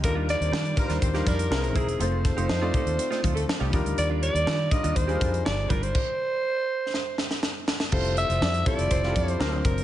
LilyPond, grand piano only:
\new Staff \with { instrumentName = "Grand piano" } { \time 4/4 \key ees \major \tempo 4 = 122 <g d' ees' f' a' bes'>4~ <g d' ees' f' a' bes'>16 r16 <g d' ees' f' bes'>8. <g d' ees' f' bes'>8. <gis c' dis' e' bes'>4 | <a c' ees' f' c''>8. <a c' ees' f' c''>8 <a c' ees' f' d''>4.~ <a c' ees' f' d''>16 r8 <g d' ees' f' bes'>8~ | <g d' ees' f' bes'>4~ <g d' ees' f' bes'>16 r16 <g d' ees' f' bes'>8. <g d' ees' f' aes' bes'>4. r16 | r1 |
\key f \major <g c' e' f' a'>4~ <g c' e' f' a'>16 r16 <g c' e' f' c''>8. <g c' e' f' g' a'>8. <fis c' d' eis' ais'>4 | }